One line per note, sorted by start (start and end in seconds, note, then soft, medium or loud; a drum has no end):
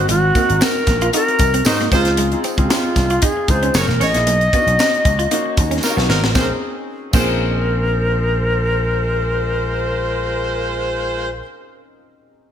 0.00 0.25 C4 medium
0.00 0.26 D#4 medium
0.00 0.26 F#4 medium
0.00 0.26 A#4 medium
0.08 0.30 G#1 loud
0.08 0.18 G#3 medium
0.08 0.64 F#4 loud
0.08 closed hi-hat loud
0.08 tambourine soft
0.35 0.44 A#3 medium
0.35 0.90 C4 medium
0.35 0.90 D#4 medium
0.35 0.90 F#4 medium
0.35 0.90 A#4 medium
0.35 kick medium
0.35 closed hi-hat medium
0.35 tambourine soft
0.49 0.59 G#1 medium
0.49 muted clean electric guitar stroke soft
0.49 closed hi-hat soft
0.61 0.70 C4 medium
0.61 1.14 A#4 loud
0.61 snare loud
0.61 tambourine medium
0.87 1.08 A#1 medium
0.87 muted clean electric guitar stroke soft
0.87 kick medium
0.87 snare soft
0.87 closed hi-hat medium
0.87 tambourine soft
1.01 1.10 F4 medium
1.01 closed hi-hat medium
1.13 1.50 C4 medium
1.13 1.51 D#4 medium
1.13 1.23 D#4 medium
1.13 1.51 F#4 medium
1.13 1.51 A#4 medium
1.13 1.67 A#4 loud
1.13 closed hi-hat loud
1.13 tambourine soft
1.28 muted clean electric guitar stroke soft
1.28 closed hi-hat soft
1.39 1.60 C2 medium
1.39 kick loud
1.39 closed hi-hat medium
1.39 tambourine medium
1.54 1.62 C4 medium
1.54 closed hi-hat medium
1.65 1.87 G#2 loud
1.65 1.78 F#3 medium
1.65 1.90 C4 medium
1.65 1.90 D#4 medium
1.65 1.92 D#4 medium
1.65 1.78 D#4 medium
1.65 1.92 F#4 medium
1.65 1.92 A#4 medium
1.65 1.78 C5 medium
1.65 muted clean electric guitar stroke soft
1.65 snare loud
1.65 tambourine medium
1.80 1.88 A#3 medium
1.80 snare soft
1.80 closed hi-hat soft
1.91 2.34 C#2 loud
1.91 2.09 G#3 medium
1.91 2.23 C4 medium
1.91 2.01 C4 medium
1.91 2.23 D#4 medium
1.91 2.40 F4 medium
1.91 2.24 F4 medium
1.91 2.09 F4 medium
1.91 2.24 G#4 medium
1.91 2.09 C5 loud
1.91 kick loud
1.91 closed hi-hat medium
1.91 tambourine soft
2.05 snare soft
2.05 closed hi-hat medium
2.17 2.27 G#3 medium
2.17 closed hi-hat loud
2.32 2.49 C4 medium
2.32 2.49 D#4 medium
2.32 2.50 F4 medium
2.32 2.50 G#4 medium
2.32 closed hi-hat soft
2.44 2.54 C4 medium
2.44 closed hi-hat medium
2.44 tambourine soft
2.58 2.68 C#2 loud
2.58 2.66 C4 medium
2.58 2.67 D#4 medium
2.58 2.67 F4 medium
2.58 2.67 G#4 medium
2.58 muted clean electric guitar stroke soft
2.58 kick medium
2.58 closed hi-hat soft
2.65 2.75 F#4 medium
2.70 3.24 C4 medium
2.70 2.80 C#4 medium
2.70 3.25 D#4 medium
2.70 3.25 F4 medium
2.70 3.26 F4 medium
2.70 3.25 G#4 medium
2.70 snare loud
2.70 tambourine medium
2.96 3.17 C2 medium
2.96 muted clean electric guitar stroke soft
2.96 kick medium
2.96 snare soft
2.96 closed hi-hat medium
2.96 tambourine soft
3.10 3.18 F4 medium
3.10 closed hi-hat soft
3.22 3.32 D#4 medium
3.22 3.52 G#4 medium
3.22 kick loud
3.22 closed hi-hat loud
3.22 tambourine soft
3.37 muted clean electric guitar stroke soft
3.48 3.69 C#2 loud
3.48 3.74 C4 medium
3.48 3.75 D#4 medium
3.48 3.75 F4 medium
3.48 3.75 G#4 medium
3.48 3.78 C5 medium
3.48 kick medium
3.48 closed hi-hat medium
3.48 tambourine soft
3.63 3.71 C#4 medium
3.63 closed hi-hat soft
3.74 3.86 F#1 loud
3.74 3.87 A#3 medium
3.74 3.87 G#4 medium
3.74 4.04 A#4 medium
3.74 3.86 C#5 loud
3.74 muted clean electric guitar stroke soft
3.74 snare loud
3.74 tambourine medium
3.88 3.98 E1 medium
3.88 3.97 A#3 medium
3.88 snare soft
4.00 4.11 A1 medium
4.00 4.18 A#3 medium
4.00 4.10 C#4 medium
4.00 4.17 G#4 medium
4.00 4.18 C#5 loud
4.00 5.84 D#5 loud
4.00 closed hi-hat medium
4.00 tambourine medium
4.14 4.27 A#1 medium
4.14 4.26 A#3 medium
4.14 4.26 D#4 medium
4.14 4.27 E4 medium
4.14 4.27 G#4 medium
4.14 snare soft
4.14 closed hi-hat medium
4.27 4.47 B1 loud
4.27 4.36 A#3 medium
4.27 closed hi-hat loud
4.41 closed hi-hat soft
4.53 5.07 A#3 medium
4.53 4.63 B3 medium
4.53 5.08 C#4 medium
4.53 4.60 D4 medium
4.53 5.08 F#4 medium
4.53 kick medium
4.53 closed hi-hat medium
4.53 tambourine soft
4.60 5.11 D#4 medium
4.67 4.76 B1 medium
4.67 muted clean electric guitar stroke soft
4.67 closed hi-hat soft
4.79 4.88 C#4 medium
4.79 snare loud
4.79 tambourine medium
4.94 closed hi-hat soft
5.05 5.26 C#2 medium
5.05 muted clean electric guitar stroke soft
5.05 kick medium
5.05 closed hi-hat medium
5.19 5.27 F4 medium
5.19 closed hi-hat soft
5.31 5.68 A#3 medium
5.31 5.68 C#4 medium
5.31 5.40 D#4 medium
5.31 5.69 D#4 medium
5.31 5.69 F#4 loud
5.31 closed hi-hat loud
5.31 tambourine soft
5.46 muted clean electric guitar stroke soft
5.57 5.78 D#2 medium
5.57 kick loud
5.57 closed hi-hat medium
5.57 tambourine medium
5.71 5.79 C#4 medium
5.71 closed hi-hat medium
5.83 5.95 F#3 medium
5.83 6.29 A#3 medium
5.83 6.29 C#4 medium
5.83 6.29 D#4 medium
5.83 5.96 D#4 medium
5.83 5.91 F4 medium
5.83 5.95 A#4 medium
5.83 muted clean electric guitar stroke soft
5.83 snare medium
5.83 tambourine medium
5.90 6.33 F#4 medium
5.97 6.07 B1 medium
5.97 6.05 B3 medium
5.97 snare medium
6.09 6.23 G#1 medium
6.09 6.26 F#3 medium
6.09 6.18 B3 medium
6.09 6.26 D#4 medium
6.09 6.26 A#4 loud
6.09 snare medium
6.09 tambourine soft
6.23 6.33 A1 medium
6.23 snare loud
6.33 6.51 A#1 medium
6.33 6.51 G#3 medium
6.33 6.45 A#3 medium
6.33 6.49 C4 medium
6.33 6.50 C#4 medium
6.33 6.51 D#4 medium
6.33 6.51 F4 medium
6.33 6.51 A#4 medium
6.33 6.51 C5 medium
6.33 kick loud
6.33 snare medium
6.33 tambourine medium
6.38 6.52 G#4 medium
7.11 11.40 A#1 loud
7.11 11.28 G#3 medium
7.11 7.24 A#3 medium
7.11 11.38 C4 medium
7.11 11.39 C#4 medium
7.11 11.41 D#4 medium
7.11 11.29 F4 medium
7.11 11.29 A#4 medium
7.11 11.28 C5 medium
7.11 kick loud
7.11 crash medium
7.11 tambourine medium
7.16 11.43 G#4 medium